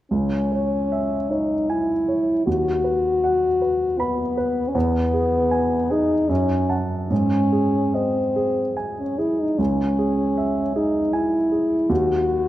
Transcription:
0.11 2.42 C#2 soft
0.11 1.32 C#4 soft
0.52 1.15 C#5 soft
0.92 1.54 E5 soft
1.30 1.71 D#4 soft
1.30 1.93 C#5 soft
1.70 2.46 E4 soft
1.70 2.31 G#5 soft
2.08 2.47 C#5 soft
2.46 4.71 D#2 soft
2.46 4.01 F#4 medium
2.84 3.46 B4 soft
3.24 3.84 F#5 soft
3.61 4.21 B4 soft
3.99 4.70 B3 soft
3.99 4.60 B5 soft
4.37 4.75 B4 soft
4.68 4.77 C#4 soft
4.75 6.26 E2 soft
4.75 5.93 B3 medium
5.14 5.75 G#4 soft
5.51 6.14 G#5 soft
5.91 6.32 D#4 medium
5.91 6.30 G#4 soft
6.29 7.08 F#2 soft
6.29 6.82 C#4 soft
6.69 7.07 F#5 soft
6.69 7.07 A5 soft
7.10 9.55 G#2 soft
7.10 7.96 C#4 medium
7.52 8.19 G#4 soft
7.94 8.77 C4 soft
7.94 8.61 D#5 soft
8.36 9.02 G#4 soft
8.77 9.43 G#5 soft
9.00 9.20 C#4 soft
9.19 9.42 E4 soft
9.19 9.59 G#4 soft
9.40 9.60 D#4 soft
9.59 11.86 C#2 soft
9.59 10.76 C#4 soft
9.98 10.61 G#4 soft
10.38 10.99 E5 soft
10.76 11.15 D#4 soft
10.76 11.37 G#4 soft
11.13 11.92 E4 soft
11.13 11.75 G#5 soft
11.52 11.90 G#4 soft
11.89 12.48 D#2 soft
11.89 12.48 F#4 medium
12.27 12.48 F#4 soft

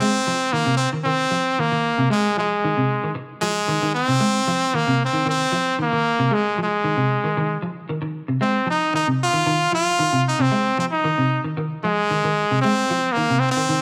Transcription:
0.00 0.20 G#3 medium
0.00 0.54 C4 loud
0.27 0.46 F3 medium
0.52 0.63 D#3 medium
0.52 0.76 A#3 loud
0.66 0.85 C3 medium
0.77 0.89 C4 loud
0.93 1.02 D#3 medium
1.04 1.25 D#3 medium
1.04 1.61 C4 loud
1.31 1.51 F3 medium
1.59 1.68 D#3 medium
1.59 2.11 A#3 medium
1.72 1.91 D#3 medium
1.98 2.07 C3 medium
2.10 2.30 G#3 medium
2.10 2.35 G#3 medium
2.37 2.56 F3 medium
2.37 3.12 G#3 medium
2.64 2.74 D#3 medium
2.77 2.96 C3 medium
3.04 3.13 D#3 medium
3.15 muted clean electric guitar stroke medium
3.41 3.61 F3 medium
3.41 3.90 G#3 loud
3.68 3.78 D#3 medium
3.82 4.01 D#3 medium
3.95 4.77 C4 loud
4.08 4.17 C3 medium
4.20 4.40 G#3 loud
4.47 4.67 F3 medium
4.74 4.84 D#3 medium
4.74 5.01 A#3 loud
4.87 5.07 C3 medium
5.05 5.27 C4 medium
5.13 5.23 D#3 medium
5.26 5.45 D#3 medium
5.26 5.77 C4 loud
5.52 5.72 F3 medium
5.79 5.89 D#3 medium
5.79 6.35 A#3 loud
5.92 6.12 D#3 medium
6.19 6.28 C3 medium
6.31 6.51 G#3 medium
6.31 6.59 G#3 medium
6.58 6.77 F3 medium
6.63 7.62 G#3 medium
6.84 6.94 D#3 medium
6.97 7.16 C3 medium
7.24 7.33 D#3 medium
7.37 7.56 D#3 medium
7.62 7.82 F3 medium
7.89 7.99 D#3 medium
8.02 8.21 D#3 medium
8.28 8.38 C3 medium
8.41 8.61 G#3 medium
8.41 8.66 C4 medium
8.66 8.86 F3 medium
8.66 8.94 D#4 loud
8.94 9.04 D#3 medium
8.94 9.07 D#4 loud
9.07 9.27 C3 medium
9.23 9.71 F4 loud
9.33 9.43 D#3 medium
9.46 9.66 D#3 medium
9.72 9.92 F3 medium
9.72 10.23 F4 loud
9.99 10.09 D#3 medium
10.13 10.32 C3 medium
10.28 10.43 D#4 medium
10.39 10.49 C3 medium
10.39 10.79 C4 medium
10.52 10.71 G#3 medium
10.78 10.98 F3 medium
10.78 10.86 C4 medium
10.92 11.41 D#4 medium
11.04 11.15 D#3 medium
11.18 11.38 C3 medium
11.44 11.54 D#3 medium
11.57 11.77 D#3 medium
11.84 12.03 F3 medium
11.84 12.59 G#3 loud
12.11 12.21 D#3 medium
12.24 12.44 D#3 medium
12.51 12.60 C3 medium
12.62 12.83 G#3 loud
12.62 13.14 C4 loud
12.90 13.10 F3 medium
13.12 13.41 A#3 loud
13.17 13.27 D#3 medium
13.30 13.50 C3 medium
13.39 13.51 C4 medium
13.51 13.82 C4 loud
13.57 13.66 D#3 medium
13.69 13.82 D#3 medium

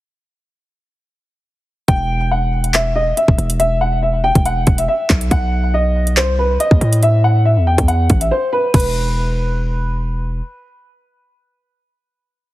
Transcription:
1.88 3.13 E1 loud
1.88 2.29 G5 loud
1.88 kick loud
1.88 closed hi-hat medium
2.31 2.72 F#5 medium
2.64 closed hi-hat medium
2.74 2.91 E5 medium
2.74 clap loud
2.74 closed hi-hat medium
2.96 3.12 D#5 medium
3.17 3.57 E5 medium
3.17 closed hi-hat medium
3.28 3.38 E1 loud
3.28 kick medium
3.38 4.31 E1 loud
3.38 closed hi-hat medium
3.50 closed hi-hat loud
3.60 3.76 E5 loud
3.60 closed hi-hat medium
3.81 3.98 F#5 medium
4.03 4.19 E5 medium
4.24 4.41 G5 medium
4.35 4.66 E1 loud
4.35 kick medium
4.35 closed hi-hat medium
4.46 4.76 F#5 medium
4.46 closed hi-hat medium
4.67 4.88 E1 loud
4.67 kick medium
4.67 closed hi-hat medium
4.78 4.86 E5 medium
4.78 closed hi-hat medium
4.88 5.29 E5 medium
5.10 5.30 B1 loud
5.10 kick loud
5.10 clap loud
5.10 closed hi-hat medium
5.21 closed hi-hat medium
5.31 6.18 B1 loud
5.31 5.72 F#5 loud
5.31 kick loud
5.31 closed hi-hat medium
5.74 6.14 D#5 medium
6.07 closed hi-hat medium
6.17 6.58 C2 loud
6.17 6.34 C5 medium
6.17 clap loud
6.17 closed hi-hat medium
6.39 6.55 B4 medium
6.60 7.00 D#5 medium
6.60 closed hi-hat medium
6.71 6.81 D#2 loud
6.71 kick medium
6.81 7.58 A2 loud
6.81 closed hi-hat medium
6.93 closed hi-hat loud
7.03 7.19 E5 loud
7.03 closed hi-hat medium
7.24 7.41 F#5 medium
7.45 7.62 E5 medium
7.57 7.77 E2 loud
7.67 7.84 G5 medium
7.78 8.08 E2 loud
7.78 kick medium
7.78 closed hi-hat medium
7.88 8.19 F#5 medium
7.88 closed hi-hat medium
8.10 8.31 A1 loud
8.10 kick medium
8.10 closed hi-hat medium
8.21 8.29 E5 medium
8.21 closed hi-hat medium
8.31 8.48 C5 medium
8.53 8.69 B4 medium
8.74 10.41 E1 loud
8.74 9.99 B4 medium
8.74 kick loud
8.74 closed hi-hat medium
8.74 crash medium
8.80 closed hi-hat medium

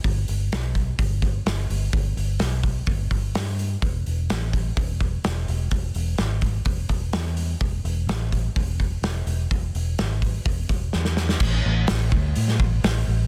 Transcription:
0.04 0.24 G1 loud
0.04 kick medium
0.04 open hi-hat medium
0.28 0.48 G1 medium
0.28 open hi-hat medium
0.52 0.92 B1 medium
0.52 snare loud
0.52 open hi-hat medium
0.75 kick medium
0.75 open hi-hat soft
0.99 1.39 G1 loud
0.99 kick loud
0.99 open hi-hat medium
1.22 kick medium
1.22 open hi-hat soft
1.46 1.66 G1 medium
1.46 snare loud
1.46 open hi-hat medium
1.70 1.90 G1 medium
1.70 open hi-hat medium
1.93 2.13 G1 medium
1.93 kick loud
1.93 open hi-hat medium
2.16 2.37 G1 medium
2.16 open hi-hat medium
2.39 2.80 B1 medium
2.39 snare medium
2.39 open hi-hat medium
2.63 kick medium
2.63 open hi-hat medium
2.86 3.07 G1 medium
2.86 kick medium
2.86 open hi-hat medium
3.11 3.31 G1 medium
3.11 kick medium
3.11 open hi-hat medium
3.35 3.75 G2 medium
3.35 snare loud
3.35 open hi-hat medium
3.59 open hi-hat medium
3.82 4.02 E1 loud
3.82 kick medium
3.82 open hi-hat medium
4.06 4.27 E1 medium
4.06 open hi-hat soft
4.30 4.70 A1 medium
4.30 snare loud
4.30 open hi-hat medium
4.53 kick medium
4.53 open hi-hat medium
4.77 5.17 E1 medium
4.77 kick loud
4.77 open hi-hat medium
5.00 kick medium
5.00 open hi-hat medium
5.24 5.45 E1 medium
5.24 snare loud
5.24 open hi-hat medium
5.48 5.69 E1 medium
5.48 open hi-hat medium
5.71 5.92 E1 medium
5.71 kick medium
5.71 open hi-hat medium
5.94 6.16 E1 medium
5.94 open hi-hat medium
6.18 6.59 G#1 medium
6.18 snare medium
6.18 open hi-hat medium
6.41 kick medium
6.41 open hi-hat medium
6.65 6.86 E1 medium
6.65 kick loud
6.65 open hi-hat medium
6.89 7.10 E1 medium
6.89 kick medium
6.89 open hi-hat medium
7.13 7.54 E2 medium
7.13 snare loud
7.13 open hi-hat medium
7.37 open hi-hat medium
7.61 7.81 E1 medium
7.61 kick loud
7.61 open hi-hat medium
7.84 8.05 E1 medium
7.84 open hi-hat medium
8.07 8.48 A1 medium
8.07 snare loud
8.07 open hi-hat medium
8.32 kick medium
8.32 open hi-hat medium
8.56 8.96 E1 medium
8.56 kick loud
8.56 open hi-hat medium
8.80 kick medium
8.80 open hi-hat medium
9.02 9.23 E1 medium
9.02 snare loud
9.02 open hi-hat medium
9.26 9.47 E1 medium
9.26 open hi-hat medium
9.51 9.71 E1 medium
9.51 kick loud
9.51 open hi-hat medium
9.75 9.95 E1 medium
9.75 open hi-hat medium
9.98 10.40 G#1 medium
9.98 snare medium
9.98 open hi-hat medium
10.22 kick medium
10.22 open hi-hat medium
10.45 10.66 E1 medium
10.45 kick loud
10.45 open hi-hat medium
10.69 10.90 E1 medium
10.69 kick medium
10.69 open hi-hat medium
10.93 11.34 E2 medium
10.93 snare medium
11.05 snare medium
11.17 snare medium
11.29 snare medium
11.40 11.62 A1 loud
11.40 kick loud
11.40 crash loud
11.66 11.87 A1 medium
11.87 12.10 A1 medium
11.87 snare loud
11.87 open hi-hat medium
12.12 12.33 D2 medium
12.12 kick medium
12.35 12.58 A2 medium
12.35 open hi-hat medium
12.48 snare soft
12.59 12.81 A1 medium
12.59 kick medium
12.84 13.05 A1 medium
12.84 snare loud
12.84 open hi-hat medium
13.07 13.27 A1 medium

